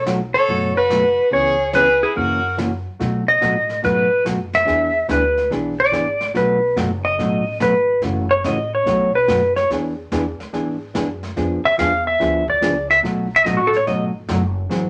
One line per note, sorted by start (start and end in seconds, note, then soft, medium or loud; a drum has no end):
0.00 0.32 B1 medium
0.06 0.19 B2 medium
0.06 0.19 F#3 medium
0.06 0.19 A3 medium
0.06 0.19 D#4 medium
0.06 0.19 F#4 medium
0.06 snare medium
0.06 hi-hat pedal medium
0.34 0.74 A4 medium
0.34 0.74 C#5 medium
0.48 1.16 F#1 medium
0.48 0.71 B2 medium
0.48 0.71 F#3 medium
0.48 0.72 A3 medium
0.48 0.72 D#4 medium
0.48 0.72 F#4 medium
0.48 brush sweep soft
0.77 1.29 F#4 medium
0.77 1.29 B4 medium
0.90 1.02 B2 medium
0.90 1.02 F#3 medium
0.90 1.03 A3 medium
0.90 1.03 D#4 medium
0.90 1.03 F#4 medium
0.90 snare medium
0.90 hi-hat pedal medium
1.31 2.00 C#2 medium
1.31 1.54 C#3 medium
1.31 1.55 E3 medium
1.31 1.55 B3 medium
1.31 1.55 C#4 medium
1.31 1.55 G#4 medium
1.31 1.72 G#4 medium
1.31 1.75 C#5 medium
1.31 brush sweep soft
1.73 1.86 C#3 medium
1.73 1.86 E3 medium
1.73 1.86 B3 medium
1.73 1.87 C#4 medium
1.73 2.00 G#4 medium
1.73 1.87 G#4 medium
1.73 2.03 B4 medium
1.73 snare medium
1.73 hi-hat pedal medium
2.02 2.15 E4 medium
2.02 2.17 G#4 medium
2.16 2.84 F#2 loud
2.16 2.39 C#3 medium
2.16 2.39 E3 medium
2.16 2.39 A#3 medium
2.16 2.39 C#4 medium
2.16 2.55 F#4 medium
2.16 2.39 F#4 medium
2.16 2.56 A#4 medium
2.16 brush sweep medium
2.57 2.70 C#3 medium
2.57 2.70 E3 medium
2.57 2.70 A#3 medium
2.57 2.70 C#4 medium
2.57 2.70 F#4 medium
2.57 snare medium
2.57 hi-hat pedal medium
3.00 3.22 B2 medium
3.00 3.41 B2 medium
3.00 3.22 F#3 medium
3.00 3.23 A3 medium
3.00 3.23 D#4 medium
3.00 3.23 F#4 medium
3.00 brush sweep soft
3.00 snare soft
3.28 3.80 D#5 medium
3.41 3.83 A2 medium
3.41 3.53 B2 medium
3.41 3.54 F#3 medium
3.41 3.54 A3 medium
3.41 3.54 D#4 medium
3.41 3.54 F#4 medium
3.41 snare medium
3.41 hi-hat pedal medium
3.69 snare soft
3.82 4.25 G#2 medium
3.82 4.06 B2 medium
3.82 4.06 F#3 medium
3.82 4.06 A3 medium
3.82 4.07 D#4 medium
3.82 4.06 F#4 medium
3.82 4.23 B4 medium
3.82 brush sweep medium
3.82 snare soft
4.25 4.67 F#2 medium
4.25 4.37 B2 medium
4.25 4.37 F#3 medium
4.25 4.38 A3 medium
4.25 4.38 D#4 medium
4.25 4.38 F#4 medium
4.25 snare medium
4.25 hi-hat pedal medium
4.53 5.06 E5 loud
4.53 snare soft
4.65 5.08 E2 medium
4.65 4.89 E3 medium
4.65 4.89 B3 medium
4.65 4.89 D4 medium
4.65 4.90 G#4 medium
4.65 brush sweep soft
4.65 snare soft
5.08 5.50 D2 loud
5.08 5.21 E3 medium
5.08 5.21 B3 medium
5.08 5.21 D4 medium
5.08 5.21 G#4 medium
5.08 5.49 B4 medium
5.08 snare medium
5.08 hi-hat pedal medium
5.37 snare soft
5.50 5.92 B1 medium
5.50 5.73 E3 medium
5.50 5.74 B3 medium
5.50 5.74 D4 medium
5.50 5.74 G#4 medium
5.50 brush sweep soft
5.50 snare soft
5.80 6.32 D5 medium
5.91 6.34 G#1 medium
5.91 6.04 E3 medium
5.91 6.05 B3 medium
5.91 6.05 D4 medium
5.91 6.05 G#4 medium
5.91 snare medium
5.91 hi-hat pedal medium
6.21 snare soft
6.34 6.76 B1 medium
6.34 6.57 B2 medium
6.34 6.57 F#3 medium
6.34 6.58 A3 medium
6.34 6.57 D#4 medium
6.34 6.57 F#4 medium
6.34 6.75 B4 medium
6.34 brush sweep medium
6.34 snare soft
6.76 7.17 F#1 loud
6.76 6.89 B2 medium
6.76 6.89 F#3 medium
6.76 6.89 A3 medium
6.76 6.89 D#4 medium
6.76 6.89 F#4 medium
6.76 snare medium
6.76 hi-hat pedal medium
7.05 7.57 D#5 loud
7.19 7.60 A1 medium
7.19 7.41 B2 medium
7.19 7.42 F#3 medium
7.19 7.42 A3 medium
7.19 7.42 D#4 medium
7.19 7.42 F#4 medium
7.19 brush sweep medium
7.19 snare soft
7.60 8.02 G#1 medium
7.60 7.72 B2 medium
7.60 7.73 F#3 medium
7.60 7.73 A3 medium
7.60 7.73 D#4 medium
7.60 7.73 F#4 medium
7.60 8.01 B4 medium
7.60 snare medium
7.60 hi-hat pedal medium
8.02 8.44 F#1 medium
8.02 8.25 C#3 medium
8.02 8.26 E3 medium
8.02 8.25 A3 medium
8.02 8.26 C#4 medium
8.02 8.26 F#4 medium
8.02 brush sweep soft
8.02 snare soft
8.31 8.44 C#5 medium
8.44 8.85 A1 loud
8.44 8.56 C#3 medium
8.44 8.56 E3 medium
8.44 8.57 A3 medium
8.44 8.57 C#4 medium
8.44 8.57 F#4 medium
8.44 8.72 D#5 loud
8.44 snare medium
8.44 hi-hat pedal medium
8.75 9.12 C#5 medium
8.86 9.27 B1 medium
8.86 9.08 B2 medium
8.86 9.09 F#3 medium
8.86 9.09 A3 medium
8.86 9.09 D#4 medium
8.86 9.09 F#4 medium
8.86 brush sweep medium
8.86 snare soft
9.15 9.54 B4 medium
9.28 9.69 F#2 medium
9.28 9.40 B2 medium
9.28 9.40 F#3 medium
9.28 9.40 A3 medium
9.28 9.40 D#4 medium
9.28 9.40 F#4 medium
9.28 snare medium
9.28 hi-hat pedal medium
9.56 9.70 C#5 medium
9.56 snare soft
9.70 10.10 E2 medium
9.70 9.93 E3 medium
9.70 9.93 B3 medium
9.70 9.93 D4 medium
9.70 9.93 G#4 medium
9.70 brush sweep medium
9.70 snare soft
10.12 10.37 E2 medium
10.12 10.24 E3 medium
10.12 10.24 B3 medium
10.12 10.24 D4 medium
10.12 10.24 G#4 medium
10.12 snare medium
10.12 hi-hat pedal medium
10.40 muted upright bass stroke soft
10.40 snare soft
10.53 10.94 G#2 medium
10.53 10.76 E3 medium
10.53 10.76 B3 medium
10.53 10.76 D4 medium
10.53 10.76 G#4 medium
10.53 brush sweep medium
10.53 snare soft
10.94 11.36 F#2 medium
10.94 11.06 E3 medium
10.94 11.07 B3 medium
10.94 11.07 D4 medium
10.94 11.07 G#4 medium
10.94 snare medium
10.94 hi-hat pedal medium
11.23 snare soft
11.36 11.62 F2 medium
11.36 11.59 F3 medium
11.36 11.59 B3 medium
11.36 11.59 D4 medium
11.36 11.60 G#4 medium
11.36 brush sweep medium
11.36 snare soft
11.64 11.79 E5 medium
11.64 muted upright bass stroke soft
11.78 12.19 E2 loud
11.78 11.90 F3 medium
11.78 11.91 B3 medium
11.78 11.91 D4 medium
11.78 11.91 G#4 medium
11.78 12.06 F5 medium
11.78 snare medium
11.78 hi-hat pedal medium
12.07 12.46 E5 loud
12.20 12.61 D2 medium
12.20 12.42 F3 medium
12.20 12.43 B3 medium
12.20 12.42 D4 medium
12.20 12.43 G#4 medium
12.20 brush sweep soft
12.20 snare soft
12.48 12.88 D5 medium
12.48 kick medium
12.61 13.03 C#2 medium
12.61 12.74 F3 medium
12.61 12.74 B3 medium
12.61 12.74 D4 medium
12.61 12.74 G#4 medium
12.61 snare medium
12.61 hi-hat pedal medium
12.90 12.99 E5 loud
12.90 snare soft
13.03 13.45 B1 medium
13.03 13.26 B2 medium
13.03 13.26 F#3 medium
13.03 13.26 A3 medium
13.03 13.26 D#4 medium
13.03 13.26 F#4 medium
13.03 brush sweep soft
13.03 snare soft
13.36 13.47 E5 loud
13.45 13.86 A1 medium
13.45 13.57 B2 medium
13.45 13.57 F#3 medium
13.45 13.57 A3 medium
13.45 13.58 D#4 medium
13.45 13.58 F#4 medium
13.45 13.59 D#5 medium
13.45 snare medium
13.45 hi-hat pedal medium
13.57 13.71 F#4 medium
13.67 13.77 A4 medium
13.73 13.85 C#5 medium
13.73 snare soft
13.87 14.28 G#1 medium
13.87 14.09 B2 medium
13.87 14.10 F#3 medium
13.87 14.10 A3 medium
13.87 14.10 D#4 medium
13.87 14.10 F#4 medium
13.87 14.04 D#5 medium
13.87 brush sweep soft
13.87 snare soft
14.29 14.70 F#1 medium
14.29 14.41 B2 medium
14.29 14.41 F#3 medium
14.29 14.41 A3 medium
14.29 14.41 D#4 medium
14.29 14.41 F#4 medium
14.29 snare medium
14.29 hi-hat pedal medium
14.69 14.90 G#1 medium
14.69 14.90 E3 medium
14.69 14.90 F#3 medium
14.69 14.90 C4 medium
14.69 14.90 F#4 medium
14.69 14.90 G#4 medium
14.69 brush sweep medium
14.69 snare soft